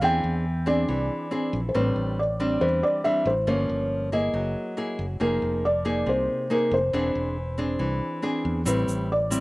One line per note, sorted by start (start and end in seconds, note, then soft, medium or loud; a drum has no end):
0.01 0.22 E2 medium
0.01 0.86 E3 medium
0.01 0.45 C4 medium
0.01 0.45 D4 medium
0.01 0.45 G#4 medium
0.01 0.70 G5 medium
0.24 0.84 E2 medium
0.66 1.28 C4 medium
0.66 1.28 D4 medium
0.66 1.28 G#4 medium
0.66 1.49 D5 medium
0.88 1.08 C2 medium
0.88 1.72 E3 medium
1.31 1.59 C4 medium
1.31 1.59 D4 medium
1.31 1.59 G#4 soft
1.53 1.73 A#1 medium
1.69 1.75 C5 soft
1.74 1.95 A1 medium
1.74 2.59 A2 medium
1.74 2.17 G3 soft
1.74 2.18 C4 medium
1.74 2.18 D4 medium
1.74 2.19 B4 medium
1.96 2.57 A1 medium
2.19 2.63 D5 medium
2.40 3.01 G3 soft
2.40 3.01 C4 medium
2.40 3.01 D4 medium
2.61 2.81 E2 medium
2.61 3.45 E3 medium
2.61 2.83 C5 medium
2.83 3.05 D5 medium
3.04 3.32 G3 soft
3.04 3.32 C4 soft
3.04 3.33 D4 medium
3.04 3.26 E5 medium
3.26 3.46 A1 medium
3.26 3.46 C5 medium
3.47 3.67 G1 medium
3.47 4.32 G2 soft
3.47 4.09 F3 medium
3.47 4.09 A#3 soft
3.47 4.09 C#4 soft
3.47 4.14 C#5 medium
3.69 4.30 G1 medium
4.12 4.74 A#3 medium
4.12 4.74 E4 soft
4.12 4.74 G#4 medium
4.12 4.95 D#5 medium
4.34 4.54 F#1 medium
4.34 5.18 F#3 medium
4.77 5.05 A#3 soft
4.77 5.05 E4 soft
4.77 5.05 G#4 medium
4.99 5.19 F#1 medium
5.20 5.40 F1 medium
5.20 6.04 F3 medium
5.20 5.63 A#3 medium
5.20 5.63 D#4 soft
5.20 5.64 G#4 medium
5.20 5.62 A#4 medium
5.42 6.03 F1 medium
5.65 6.09 D5 medium
5.85 6.46 A#3 medium
5.85 6.47 D#4 medium
5.85 6.47 G#4 medium
6.06 6.27 C2 medium
6.06 6.91 C3 soft
6.06 6.52 C5 medium
6.50 6.78 A#3 medium
6.50 6.78 D#4 soft
6.50 6.78 G#4 medium
6.50 6.73 A#4 medium
6.71 6.92 F1 medium
6.71 8.20 C5 medium
6.93 7.13 E1 medium
6.93 7.78 E3 medium
6.93 7.36 C4 medium
6.93 7.36 D4 medium
6.93 7.37 G#4 medium
7.15 7.76 E1 medium
7.58 8.19 C4 medium
7.58 8.20 D4 medium
7.58 8.20 G#4 medium
7.79 8.00 C2 medium
7.79 8.64 E3 medium
8.22 8.62 C4 soft
8.22 8.63 D4 soft
8.22 8.63 G#4 medium
8.45 8.65 E2 medium
8.65 8.86 A1 medium
8.65 9.40 A2 soft
8.65 9.09 G3 medium
8.65 9.09 C4 medium
8.65 9.09 E4 medium
8.65 9.12 B4 medium
8.65 shaker medium
8.88 9.40 A1 medium
8.88 shaker soft
9.12 9.40 D5 medium
9.30 9.40 G3 medium
9.30 9.40 C4 medium
9.30 9.40 E4 medium
9.30 shaker medium